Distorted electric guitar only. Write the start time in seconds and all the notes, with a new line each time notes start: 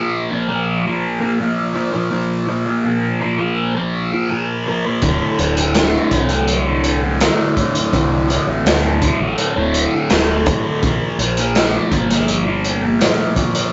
Already playing: A#2 F3 A#3
0.30 A#2 F3 A#3
0.48 F3 A#3
0.85 F3 A#3
1.20 F3 A#3
1.38 A#2 F3 A#3
1.74 A#2 F3 A#3
1.93 F3 A#3
2.11 A#2 F3 A#3
2.47 A#2 F3 A#3
2.66 F3 A#3
2.84 A#2 F3 A#3
3.21 A#2 F3 A#3
3.38 F3 A#3
3.75 F3 A#3
4.12 F3 A#3
4.29 A#2 F3 A#3
4.67 A#2 F3 A#3
4.85 F3 A#3
5.03 D2 A2 D3
5.39 D2 A2 D3
5.57 A2 D3
5.75 D2 A2 D3
6.11 D2 A2 D3
6.30 A2 D3
6.66 A2 D3
7.02 A2 D3
7.20 D2 A2 D3
7.57 D2 A2 D3
7.75 A2 D3
7.93 D2 A2 D3
8.29 D2 A2 D3
8.47 A2 D3
8.66 D2 A2 D3
9.02 D2 A2 D3
9.20 A2 D3
9.56 A2 D3
9.94 A2 D3
10.11 D2 A2 D3
10.47 D2 A2 D3
10.66 A2 D3
10.84 A#2 F3 A#3
11.20 A#2 F3 A#3
11.38 F3 A#3
11.55 A#2 F3 A#3
11.92 A#2 F3 A#3
12.10 F3 A#3
12.46 F3 A#3
12.82 F3 A#3
13.00 A#2 F3 A#3
13.36 A#2 F3 A#3
13.55 F3 A#3